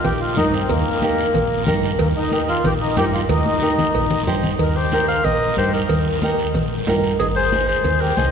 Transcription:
0.04 0.39 A#1 medium
0.04 0.20 G4 loud
0.04 cowbell medium
0.04 high conga soft
0.04 low conga medium
0.04 long guiro medium
0.21 0.36 F4 loud
0.37 0.64 G2 medium
0.37 0.54 D#4 loud
0.37 0.60 D#4 medium
0.37 0.60 G4 medium
0.37 0.60 A#4 medium
0.37 high conga medium
0.37 short guiro medium
0.53 0.70 C4 medium
0.53 short guiro medium
0.69 0.83 D#2 loud
0.69 1.63 A#3 loud
0.69 cowbell loud
0.69 high conga soft
0.69 low conga medium
0.69 long guiro medium
1.02 1.25 D#4 medium
1.02 1.25 G4 medium
1.02 1.25 A#4 medium
1.02 high conga medium
1.02 short guiro medium
1.19 short guiro medium
1.34 1.69 A#1 medium
1.34 cowbell medium
1.34 high conga soft
1.34 low conga medium
1.34 long guiro medium
1.67 1.93 G2 medium
1.67 1.90 D#4 medium
1.67 1.90 G4 medium
1.67 1.90 A#4 loud
1.67 high conga medium
1.67 low conga medium
1.67 short guiro medium
1.83 short guiro medium
1.99 2.12 D#2 loud
1.99 2.08 A#3 medium
1.99 cowbell loud
1.99 high conga soft
1.99 long guiro medium
2.17 2.32 D#4 loud
2.32 2.55 D#4 medium
2.32 2.48 D#4 loud
2.32 2.55 G4 medium
2.32 2.55 A#4 medium
2.32 high conga medium
2.32 short guiro medium
2.48 2.65 F4 loud
2.48 short guiro medium
2.64 2.98 A#1 loud
2.64 2.73 G4 loud
2.64 cowbell loud
2.64 high conga soft
2.64 low conga medium
2.64 long guiro medium
2.81 2.96 D#4 loud
2.97 3.23 G2 loud
2.97 3.20 D#4 medium
2.97 3.20 G4 medium
2.97 3.05 G4 loud
2.97 3.20 A#4 medium
2.97 high conga medium
2.97 low timbale medium
2.97 short guiro medium
3.14 3.21 F4 medium
3.14 short guiro medium
3.29 3.42 D#2 loud
3.29 4.23 D#4 loud
3.29 cowbell loud
3.29 high conga loud
3.29 long guiro medium
3.46 high conga loud
3.62 3.85 D#4 medium
3.62 3.85 G4 medium
3.62 3.85 A#4 medium
3.62 short guiro medium
3.78 low conga medium
3.78 short guiro medium
3.95 4.28 A#1 loud
3.95 cowbell medium
3.95 long guiro medium
4.11 low conga medium
4.27 4.53 G2 loud
4.27 4.50 D#4 medium
4.27 4.50 G4 medium
4.27 4.50 C5 loud
4.27 short guiro medium
4.43 low conga medium
4.43 short guiro medium
4.59 5.11 D#2 medium
4.59 4.74 D#4 medium
4.59 4.78 A#4 medium
4.59 cowbell medium
4.59 high conga soft
4.59 long guiro medium
4.76 5.08 G4 medium
4.76 5.08 C5 medium
4.92 5.15 D#4 medium
4.92 5.15 G4 medium
4.92 5.15 A#4 medium
4.92 high conga medium
4.92 short guiro medium
5.08 5.23 C5 medium
5.08 5.26 F5 medium
5.08 short guiro medium
5.24 5.51 A#1 loud
5.24 5.57 A#4 medium
5.24 5.57 D#5 loud
5.24 cowbell medium
5.24 high conga soft
5.24 low conga medium
5.24 long guiro medium
5.57 5.83 G2 medium
5.57 5.80 D#4 medium
5.57 5.72 G4 medium
5.57 5.80 G4 medium
5.57 5.80 A#4 medium
5.57 5.73 C5 medium
5.57 high conga medium
5.57 short guiro medium
5.73 6.35 D#4 medium
5.73 6.35 A#4 medium
5.73 short guiro medium
5.89 6.42 D#2 medium
5.89 cowbell loud
5.89 high conga soft
5.89 low conga medium
5.89 long guiro medium
6.22 6.45 D#4 medium
6.22 6.45 G4 medium
6.22 6.45 A#4 loud
6.22 high conga medium
6.22 short guiro medium
6.38 short guiro medium
6.54 6.81 A#1 loud
6.54 cowbell medium
6.54 high conga soft
6.54 low conga medium
6.54 long guiro medium
6.87 7.13 G2 medium
6.87 7.10 D#4 medium
6.87 7.10 G4 medium
6.87 7.10 A#4 medium
6.87 high conga medium
6.87 low timbale medium
6.87 short guiro medium
7.04 short guiro medium
7.19 7.72 G#1 medium
7.19 7.27 D#4 medium
7.19 7.27 G#4 medium
7.19 cowbell loud
7.19 high conga soft
7.19 long guiro medium
7.36 7.67 G#4 medium
7.36 7.66 C5 medium
7.52 7.75 D#4 medium
7.52 7.75 G#4 medium
7.52 7.75 C5 medium
7.52 high conga medium
7.52 short guiro medium
7.68 7.99 G#4 medium
7.68 8.02 C5 medium
7.68 short guiro medium
7.84 8.11 D#2 loud
7.84 cowbell medium
7.84 high conga soft
7.84 low conga medium
7.84 long guiro medium
8.01 8.17 G4 medium
8.01 8.16 A#4 medium
8.16 8.31 C2 medium
8.16 8.31 D#4 medium
8.16 8.31 G#4 medium
8.16 8.31 C5 medium
8.16 8.31 D#5 medium
8.16 high conga medium
8.16 short guiro medium

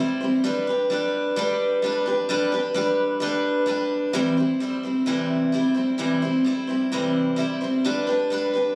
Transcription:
0.00 0.20 G3 medium
0.00 0.21 C4 medium
0.00 0.21 E4 medium
0.00 0.19 C5 medium
0.21 0.43 G3 medium
0.21 0.44 C4 medium
0.21 0.44 E4 soft
0.21 0.44 C5 medium
0.44 0.67 G3 medium
0.44 0.67 D4 medium
0.44 0.68 G4 medium
0.44 0.66 B4 loud
0.67 0.90 D4 medium
0.67 0.91 G4 medium
0.67 0.90 B4 medium
0.90 1.36 G3 medium
0.90 1.36 D4 medium
0.90 1.38 G4 medium
0.90 1.37 B4 medium
1.36 1.82 G3 loud
1.36 1.83 D4 medium
1.36 1.84 G4 medium
1.36 1.84 B4 loud
1.82 2.06 G3 medium
1.82 2.06 D4 medium
1.82 2.06 G4 medium
1.82 2.05 B4 medium
2.06 2.29 D4 soft
2.06 2.29 G4 medium
2.06 2.29 B4 medium
2.29 2.52 G3 medium
2.29 2.52 D4 medium
2.29 2.52 G4 medium
2.29 2.51 B4 loud
2.52 2.74 D4 soft
2.52 2.76 G4 medium
2.52 2.75 B4 medium
2.74 3.20 G3 medium
2.74 3.20 D4 medium
2.74 3.22 G4 medium
2.74 3.22 B4 medium
3.20 3.65 G3 medium
3.20 3.66 D4 medium
3.20 3.68 G4 medium
3.20 3.68 B4 loud
3.66 4.13 G3 medium
3.66 4.14 D4 medium
3.66 4.15 G4 medium
3.66 4.15 B4 medium
4.13 4.37 C3 medium
4.13 4.37 E3 medium
4.13 4.37 G3 medium
4.13 4.37 C4 loud
4.13 4.37 E4 loud
4.13 4.36 C5 medium
4.37 4.59 G3 medium
4.37 4.60 C4 medium
4.37 4.61 E4 medium
4.37 4.60 C5 medium
4.60 4.83 G3 medium
4.60 4.84 C4 medium
4.60 4.83 E4 medium
4.60 4.82 C5 medium
4.83 5.06 G3 soft
4.83 5.06 C4 soft
4.83 5.07 E4 medium
4.83 5.07 C5 medium
5.06 5.53 C3 medium
5.06 5.53 E3 medium
5.06 5.52 G3 medium
5.06 5.52 C4 medium
5.06 5.53 E4 medium
5.06 5.54 C5 medium
5.52 5.76 G3 medium
5.52 5.76 C4 medium
5.52 5.75 E4 medium
5.52 5.73 C5 medium
5.74 5.98 G3 soft
5.74 5.98 C4 medium
5.74 5.98 E4 medium
5.74 5.98 C5 medium
5.98 6.22 C3 medium
5.98 6.22 E3 medium
5.98 6.22 G3 medium
5.98 6.22 C4 medium
5.98 6.21 E4 loud
5.98 6.21 C5 loud
6.22 6.43 G3 soft
6.22 6.45 C4 medium
6.22 6.46 E4 medium
6.22 6.45 C5 medium
6.45 6.68 G3 medium
6.45 6.69 C4 medium
6.45 6.67 E4 medium
6.45 6.66 C5 medium
6.67 6.91 G3 soft
6.67 6.92 C4 soft
6.67 6.92 E4 medium
6.67 6.91 C5 medium
6.92 7.38 C3 medium
6.92 7.38 E3 medium
6.92 7.35 G3 medium
6.92 7.37 C4 loud
6.92 7.38 E4 loud
6.92 7.39 C5 loud
7.36 7.60 G3 medium
7.36 7.61 C4 medium
7.36 7.61 E4 medium
7.36 7.60 C5 medium
7.61 7.83 G3 soft
7.61 7.85 C4 medium
7.61 7.85 E4 medium
7.61 7.84 C5 medium
7.85 8.08 G3 medium
7.85 8.08 D4 medium
7.85 8.07 G4 medium
7.85 8.06 B4 medium
8.07 8.30 D4 medium
8.07 8.31 G4 medium
8.07 8.30 B4 medium
8.30 8.54 G3 medium
8.30 8.54 D4 medium
8.30 8.54 G4 medium
8.30 8.52 B4 medium
8.54 8.75 D4 soft
8.54 8.75 G4 medium
8.54 8.75 B4 medium

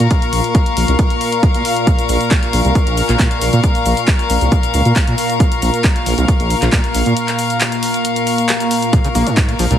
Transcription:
0.00 8.92 A#2 medium
0.00 0.07 A#2 loud
0.00 9.79 A#4 medium
0.00 9.79 F5 medium
0.00 9.79 C#6 medium
0.00 closed hi-hat medium
0.11 kick loud
0.11 closed hi-hat medium
0.22 closed hi-hat soft
0.33 0.40 A#1 loud
0.33 open hi-hat loud
0.44 closed hi-hat medium
0.55 kick loud
0.55 closed hi-hat medium
0.66 closed hi-hat medium
0.77 0.85 A#1 medium
0.77 open hi-hat loud
0.88 0.95 C2 loud
0.88 closed hi-hat medium
0.99 kick loud
0.99 closed hi-hat medium
1.10 closed hi-hat soft
1.21 open hi-hat loud
1.32 closed hi-hat medium
1.43 kick loud
1.43 closed hi-hat medium
1.54 1.62 A#2 loud
1.54 closed hi-hat medium
1.65 open hi-hat loud
1.76 closed hi-hat medium
1.87 kick loud
1.87 closed hi-hat medium
1.87 shaker soft
1.99 closed hi-hat soft
1.99 shaker soft
2.09 2.17 A#1 loud
2.09 open hi-hat loud
2.09 shaker medium
2.21 closed hi-hat soft
2.21 shaker soft
2.31 kick loud
2.31 clap loud
2.31 closed hi-hat medium
2.31 shaker soft
2.43 closed hi-hat soft
2.53 2.61 A#1 medium
2.53 open hi-hat loud
2.53 shaker medium
2.65 2.72 C2 loud
2.65 closed hi-hat medium
2.65 shaker soft
2.75 kick loud
2.75 closed hi-hat medium
2.75 shaker soft
2.87 3.01 A#1 medium
2.87 closed hi-hat medium
2.97 open hi-hat loud
2.97 shaker medium
3.09 3.16 A#1 medium
3.09 clap soft
3.09 closed hi-hat medium
3.09 shaker soft
3.19 3.27 A#2 medium
3.19 kick loud
3.19 clap loud
3.19 closed hi-hat medium
3.19 shaker soft
3.31 closed hi-hat soft
3.41 3.49 A#1 loud
3.41 open hi-hat loud
3.41 shaker medium
3.53 3.60 A#2 loud
3.53 closed hi-hat medium
3.53 shaker soft
3.64 kick loud
3.64 closed hi-hat medium
3.64 shaker soft
3.75 closed hi-hat soft
3.75 shaker soft
3.86 3.93 A#1 loud
3.86 open hi-hat loud
3.86 shaker medium
3.97 closed hi-hat medium
3.97 shaker soft
4.08 kick loud
4.08 clap loud
4.08 closed hi-hat medium
4.08 shaker soft
4.19 closed hi-hat soft
4.19 shaker soft
4.30 4.38 A#1 medium
4.30 open hi-hat loud
4.30 shaker medium
4.41 4.48 C2 loud
4.41 closed hi-hat soft
4.41 shaker soft
4.52 kick loud
4.52 closed hi-hat medium
4.52 shaker soft
4.63 closed hi-hat soft
4.63 shaker soft
4.74 4.82 C#2 loud
4.74 open hi-hat loud
4.74 shaker medium
4.85 4.93 A#2 medium
4.85 closed hi-hat medium
4.85 shaker soft
4.96 kick loud
4.96 clap loud
4.96 closed hi-hat medium
4.96 shaker soft
5.07 5.15 A#2 medium
5.07 closed hi-hat medium
5.18 open hi-hat loud
5.18 shaker medium
5.30 closed hi-hat medium
5.30 shaker soft
5.40 kick loud
5.40 closed hi-hat medium
5.40 shaker soft
5.52 closed hi-hat medium
5.52 shaker soft
5.62 5.70 A#1 loud
5.62 open hi-hat loud
5.62 shaker medium
5.74 closed hi-hat soft
5.74 shaker soft
5.84 kick loud
5.84 clap loud
5.84 closed hi-hat medium
5.84 shaker soft
5.96 closed hi-hat medium
6.06 6.14 A#1 medium
6.06 open hi-hat loud
6.06 shaker medium
6.18 6.25 C2 loud
6.18 closed hi-hat medium
6.18 shaker soft
6.28 kick loud
6.28 closed hi-hat medium
6.28 shaker soft
6.40 6.54 A#1 medium
6.40 closed hi-hat medium
6.50 open hi-hat loud
6.50 shaker medium
6.62 6.69 A#1 medium
6.62 clap soft
6.62 closed hi-hat medium
6.62 shaker soft
6.72 6.80 A#2 medium
6.72 kick loud
6.72 clap loud
6.72 closed hi-hat medium
6.72 shaker soft
6.84 closed hi-hat medium
6.95 7.02 A#1 medium
6.95 open hi-hat loud
6.95 shaker medium
7.06 7.13 A#2 medium
7.06 closed hi-hat soft
7.06 shaker soft
7.17 closed hi-hat medium
7.17 shaker soft
7.28 clap soft
7.28 closed hi-hat medium
7.28 shaker soft
7.39 open hi-hat loud
7.39 shaker medium
7.50 closed hi-hat medium
7.50 shaker soft
7.61 clap loud
7.61 closed hi-hat medium
7.61 shaker soft
7.72 closed hi-hat medium
7.72 shaker soft
7.83 open hi-hat loud
7.83 shaker medium
7.94 closed hi-hat medium
7.94 shaker soft
8.05 closed hi-hat medium
8.05 shaker soft
8.16 closed hi-hat medium
8.16 shaker soft
8.27 open hi-hat loud
8.27 shaker medium
8.38 closed hi-hat medium
8.38 shaker soft
8.49 clap loud
8.49 closed hi-hat medium
8.49 shaker soft
8.60 closed hi-hat medium
8.60 shaker soft
8.71 open hi-hat loud
8.71 shaker medium
8.82 closed hi-hat medium
8.82 shaker soft
8.93 8.99 A#2 loud
8.93 9.79 A#2 medium
8.93 kick loud
8.93 closed hi-hat medium
8.93 shaker soft
9.04 9.08 C#3 loud
9.04 closed hi-hat medium
9.04 shaker soft
9.15 9.23 A#1 loud
9.15 9.28 A#3 medium
9.15 open hi-hat loud
9.15 shaker medium
9.27 9.50 G#2 medium
9.27 closed hi-hat medium
9.27 shaker soft
9.37 kick loud
9.37 clap loud
9.37 closed hi-hat medium
9.37 shaker soft
9.49 9.54 A#2 medium
9.49 closed hi-hat medium
9.59 9.67 A#1 medium
9.59 9.66 F3 medium
9.59 open hi-hat loud
9.59 shaker medium
9.71 9.78 C2 loud
9.71 9.77 A#2 loud
9.71 closed hi-hat medium
9.71 shaker soft

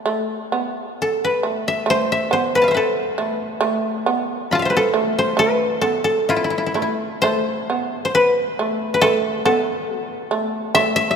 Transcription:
0.06 0.52 A3 medium
0.52 1.43 B3 soft
1.02 2.76 A4 medium
1.25 1.96 B4 medium
1.43 1.85 A3 soft
1.68 2.12 E5 medium
1.86 2.31 A3 medium
1.90 2.32 C5 medium
2.12 2.67 E5 medium
2.31 3.18 B3 medium
2.31 2.61 C5 medium
2.55 2.74 B4 medium
2.55 2.77 B5 soft
2.62 4.08 F5 soft
2.62 3.87 A5 soft
2.68 4.42 C5 soft
2.68 4.17 E5 soft
2.74 4.67 A4 medium
2.74 4.52 B4 soft
3.18 3.59 A3 medium
3.61 4.05 A3 medium
4.06 4.93 B3 medium
4.51 6.29 F4 medium
4.51 5.81 A5 soft
4.51 4.71 B5 soft
4.59 6.11 E5 soft
4.59 6.04 F5 soft
4.65 5.18 C5 soft
4.70 5.25 B4 soft
4.77 5.81 A4 medium
4.94 5.36 A3 medium
5.19 5.45 C5 medium
5.37 5.80 A3 medium
5.37 7.17 B4 medium
5.81 6.74 B3 soft
5.81 6.04 A4 medium
6.04 7.95 A4 medium
6.29 6.36 E4 soft
6.29 8.48 F4 medium
6.36 6.44 E4 soft
6.44 6.50 E4 soft
6.50 6.58 E4 soft
6.58 6.66 E4 soft
6.66 6.74 E4 soft
6.74 7.21 A3 soft
6.74 6.82 E4 soft
6.82 9.08 E4 soft
7.22 7.68 A3 medium
7.22 8.05 C5 medium
7.70 8.58 B3 soft
8.05 8.21 C5 medium
8.15 8.94 B4 medium
8.59 9.01 A3 medium
8.94 10.72 B4 medium
9.01 9.44 A3 medium
9.01 9.45 A4 medium
9.45 10.31 B3 medium
9.45 10.00 A4 medium
10.00 11.16 F4 medium
10.31 10.73 A3 medium
10.75 11.16 A3 medium
10.75 10.96 E5 loud
10.96 11.10 E5 medium
11.11 11.16 E5 medium

